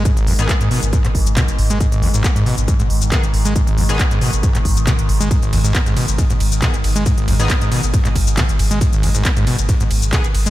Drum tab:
RD |----------------|----------------|----------------|x-x-x-x-x-x-x-x-|
HH |xxoxxxoxxxoxxxox|xxoxxxoxxxoxxxox|xxoxxxoxxxoxxxox|xxoxxxoxxxoxxxox|
SH |xx-xxx-xxx-xxx-x|xx-xxx-xxx-xxx-x|xx-xxx-xxx-xxx-x|xx-xxx-xxx-xxx-x|
CP |----x----x--x---|----x-------x---|----x----x--x---|----x-------x---|
BD |o---o---o-o-o---|o---o---o---o---|o---o---o-o-o---|o---o---o---o---|

RD |x-x-x-x-x-x-x-x-|x-x-x-x-x-x-x-x-|
HH |xxoxxxoxxxoxxxox|xxoxxxoxxxoxxxox|
SH |xx-xxx-xxx-xxx-x|xx-xxx-xxx-xxx-x|
CP |----x----x--x---|----x-------x---|
BD |o---o---o-o-o---|o---o---o---o---|